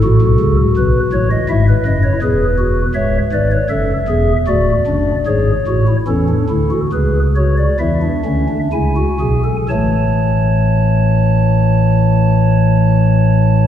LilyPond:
<<
  \new Staff \with { instrumentName = "Pipe organ" } { \time 4/4 \key a \major \tempo 4 = 73 << { a'4 b'8 cis''16 dis''16 e''16 b'16 dis''16 cis''16 b'4 | e''8 d''16 cis''16 e''4 d''4 cis''4 | a'4 b'8 cis''16 d''16 e''4 gis''4 | <e a a''>1 | } \\ { fis'2 e'4 gis'8 fis'8 | cis''8 b'8 a'8 gis'8 fis'8 d'8 gis'8 fis'16 e'16 | cis'16 d'16 e'16 fis'16 gis'8 fis'8 e'16 d'16 cis'16 d'16 e'16 fis'16 gis'16 a'16 | cis''1 | } >> }
  \new Staff \with { instrumentName = "Pipe organ" } { \clef bass \time 4/4 \key a \major <a,, a,>16 <b,, b,>16 <cis, cis>8 <b,, b,>8 <a,, a,>8 <gis,, gis,>8 <fis,, fis,>8 <e,, e,>4 | <cis,, cis,>8 <gis,, gis,>8 <fis,, fis,>8 <e,, e,>8 <d,, d,>8 <fis,, fis,>8 <gis,, gis,>8 <a,, a,>8 | <e, e>8 <d, d>8 <cis, cis>4 <e, e>8 <d, d>8 <cis, cis>8 <b,, b,>8 | <a,, a,>1 | }
>>